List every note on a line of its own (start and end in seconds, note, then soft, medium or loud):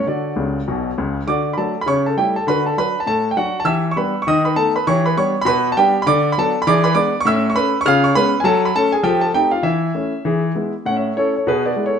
0.06 0.31 D3 medium
0.06 1.11 F#4 soft
0.06 1.11 A4 soft
0.06 0.98 D5 medium
0.36 0.58 C#2 medium
0.36 0.59 C#3 medium
0.68 0.90 B1 medium
0.68 0.89 B2 medium
0.98 1.20 C#2 medium
0.98 1.20 C#3 medium
1.27 1.52 D3 medium
1.27 1.44 F#4 medium
1.27 1.50 D5 medium
1.27 1.47 D6 medium
1.53 1.73 F#3 medium
1.53 1.58 B5 medium
1.58 1.74 A3 medium
1.58 1.74 D4 soft
1.58 1.80 A4 medium
1.58 1.77 A5 medium
1.81 1.87 B5 medium
1.86 2.12 C#3 medium
1.86 2.04 C#5 medium
1.86 2.02 C#6 medium
2.06 2.17 A4 medium
2.06 2.15 A5 medium
2.17 2.33 G3 soft
2.17 2.33 A3 soft
2.17 2.34 E4 medium
2.17 2.34 G4 medium
2.17 2.32 G5 medium
2.36 2.47 A4 medium
2.36 2.45 A5 medium
2.47 2.72 D3 medium
2.47 2.65 F#4 medium
2.47 2.64 B4 medium
2.47 2.62 B5 medium
2.66 2.77 A4 medium
2.66 2.75 A5 medium
2.77 2.94 F#3 soft
2.77 2.93 D4 soft
2.77 3.00 B4 medium
2.77 2.98 B5 medium
3.00 3.06 A5 medium
3.07 3.32 A2 medium
3.07 3.30 A4 medium
3.07 3.27 A5 loud
3.31 3.36 G5 medium
3.37 3.53 F#3 soft
3.37 3.53 D4 soft
3.37 3.59 F#4 medium
3.37 3.57 F#5 medium
3.60 3.66 A5 medium
3.65 3.90 E3 medium
3.65 3.82 G4 medium
3.65 3.88 E5 medium
3.65 3.86 E6 loud
3.91 3.97 C#6 medium
3.96 4.13 G3 medium
3.96 4.13 B3 medium
3.96 4.13 D4 medium
3.96 4.19 B4 medium
3.96 4.17 B5 medium
4.22 4.27 C#6 medium
4.27 4.52 D#3 medium
4.27 4.44 D#5 medium
4.27 4.42 D#6 loud
4.45 4.56 B4 medium
4.45 4.55 B5 medium
4.56 4.72 A3 soft
4.56 4.73 B3 medium
4.56 4.73 D#4 medium
4.56 4.73 A4 medium
4.56 4.71 A5 loud
4.76 4.86 B4 medium
4.76 4.85 B5 medium
4.87 5.12 E3 medium
4.87 5.04 G4 medium
4.87 5.04 C#5 medium
4.87 5.02 C#6 loud
5.06 5.17 B4 medium
5.06 5.15 B5 medium
5.17 5.33 G3 medium
5.17 5.33 B3 medium
5.17 5.33 D4 medium
5.17 5.39 C#5 medium
5.17 5.37 C#6 loud
5.41 5.71 B2 medium
5.41 5.45 B5 medium
5.46 5.69 B4 medium
5.46 5.66 B5 loud
5.72 5.77 A5 medium
5.77 5.93 G3 medium
5.77 5.93 B3 medium
5.77 5.94 D4 medium
5.77 5.99 G4 medium
5.77 5.97 G5 loud
6.02 6.07 B5 medium
6.06 6.31 D3 loud
6.06 6.29 D5 medium
6.06 6.27 D6 loud
6.32 6.37 B5 medium
6.38 6.54 F#3 medium
6.38 6.54 B3 medium
6.38 6.54 D4 medium
6.38 6.60 A4 medium
6.38 6.58 A5 loud
6.62 6.67 B5 loud
6.67 6.92 E3 loud
6.67 6.84 G#4 medium
6.67 6.84 D5 loud
6.67 6.82 D6 loud
6.84 6.95 B4 medium
6.84 6.94 B5 loud
6.95 7.11 G#3 medium
6.95 7.12 B3 medium
6.95 7.12 D4 medium
6.95 7.18 D5 medium
6.95 7.15 D6 loud
7.20 7.26 C#6 loud
7.25 7.51 A2 loud
7.25 7.44 C#4 medium
7.25 7.49 E5 medium
7.25 7.46 E6 loud
7.50 7.56 C#6 medium
7.55 7.71 A3 medium
7.55 7.72 C#4 medium
7.55 7.78 B4 medium
7.55 7.76 B5 loud
7.81 7.86 C#6 loud
7.86 8.11 C#3 loud
7.86 8.03 F4 medium
7.86 8.03 F5 loud
7.86 8.01 F6 loud
8.04 8.16 C#5 medium
8.04 8.14 C#6 medium
8.15 8.32 G#3 medium
8.15 8.32 B3 medium
8.15 8.32 C#4 medium
8.15 8.38 B4 medium
8.15 8.36 B5 loud
8.40 8.70 F#3 loud
8.40 8.46 G#5 medium
8.45 8.64 A4 medium
8.45 8.62 A5 loud
8.65 8.74 B5 medium
8.75 8.92 A3 medium
8.75 8.92 C#4 medium
8.75 8.93 A4 medium
8.75 8.91 A5 loud
8.92 9.05 G#4 medium
8.92 9.03 G#5 medium
9.03 9.30 F3 loud
9.03 9.22 G4 medium
9.03 9.21 A4 medium
9.03 9.19 G5 loud
9.21 9.34 A4 medium
9.21 9.32 A5 medium
9.33 9.50 A3 soft
9.33 9.51 C4 medium
9.33 9.51 D#4 medium
9.33 9.52 G4 medium
9.33 9.50 G5 loud
9.51 9.64 F4 medium
9.51 9.62 F5 medium
9.63 9.89 E3 medium
9.63 9.94 E4 medium
9.63 10.41 E5 medium
9.95 10.11 A3 soft
9.95 10.12 C#4 soft
9.95 10.12 E4 medium
10.25 10.50 E3 medium
10.25 10.42 G#4 medium
10.55 10.71 G#3 soft
10.55 10.72 B3 soft
10.55 10.72 E4 medium
10.86 11.11 A2 medium
10.86 11.03 C#4 soft
10.86 10.95 F#5 medium
10.96 11.15 C#5 soft
10.96 11.13 E5 medium
11.16 11.32 A3 soft
11.16 11.33 C#4 soft
11.16 11.33 E4 soft
11.16 11.34 A4 medium
11.16 11.31 C#5 medium
11.36 11.46 A4 soft
11.36 11.45 C#5 medium
11.47 11.72 B2 medium
11.47 11.64 G#4 medium
11.47 11.62 B4 medium
11.66 11.85 B4 soft
11.66 11.82 D5 medium
11.76 11.92 G#3 soft
11.76 11.93 B3 soft
11.76 11.93 E4 soft
11.86 11.99 A4 medium
11.86 11.99 C#5 medium